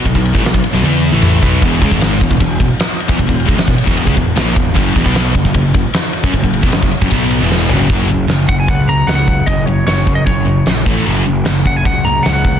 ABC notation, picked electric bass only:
X:1
M:4/4
L:1/16
Q:1/4=153
K:Elyd
V:1 name="Picked electric bass" clef=bass
B,,, B,,,2 =A,,, B,,, B,,, z B,,, E,,3 A,,,3 B,,,2 | E,,,2 C,, G,,,3 E,,, E,,, E,,,2 E,,, z4 E,, | E,,, E,,,2 C,, E,,, E,,, z E,,,2 C,, E,,,2 A,,,2 E,,,2 | F,,,2 E,,, B,,,3 F,,, F,,, F,,,2 F,,, z4 F,, |
F,,, F,,,2 E,,, F,,, F,,, z F,,, B,,,3 E,,,3 F,,,2 | F,,,2 F,,,2 F,,,2 F,,,2 C,,4 C,,4 | F,,,4 F,,,2 F,,2 F,,,4 A,,,2 =A,,,2 | F,,,2 F,,,2 F,,,2 F,,,2 C,,4 C,,4 |]